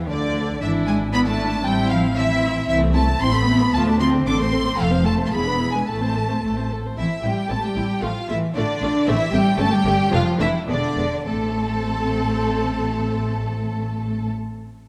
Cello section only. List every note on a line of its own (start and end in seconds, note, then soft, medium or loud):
0.00 0.11 E3 loud
0.09 0.60 D3 medium
0.62 0.87 E3 loud
0.87 0.95 G#3 loud
1.14 1.26 B3 loud
1.27 1.65 A3 loud
1.66 1.91 G3 loud
1.92 2.00 F3 loud
2.18 2.69 E3 loud
2.70 2.95 E3 loud
2.96 3.04 A3 loud
3.22 3.35 C4 loud
3.35 3.73 B3 loud
3.75 4.01 A3 loud
4.01 4.27 C4 loud
4.28 4.33 D4 loud
4.40 4.79 C4 loud
4.79 5.05 F3 loud
5.06 5.33 A3 loud
5.32 5.73 B3 loud
5.74 5.88 G#3 medium
5.88 6.69 A3 loud
6.99 7.07 E3 loud
7.25 7.51 G3 medium
7.52 7.64 A3 medium
7.66 8.04 G3 medium
8.04 8.12 F3 loud
8.31 8.56 E3 loud
8.58 9.07 D3 loud
9.09 9.33 E3 loud
9.34 9.59 G3 loud
9.60 9.73 A3 loud
9.74 10.13 G3 loud
10.13 10.40 F3 loud
10.41 10.49 E3 loud
10.69 11.27 D3 loud
11.28 14.30 A3 medium